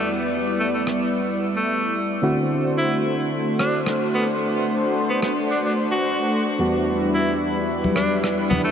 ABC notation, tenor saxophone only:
X:1
M:4/4
L:1/16
Q:1/4=110
K:Em
V:1 name="Tenor saxophone"
z4 A, A, z4 z A,3 z2 | z4 E z4 z D z3 B, z | z4 z B, B, z D D z F4 z | z4 E z4 z D z3 B, A, |]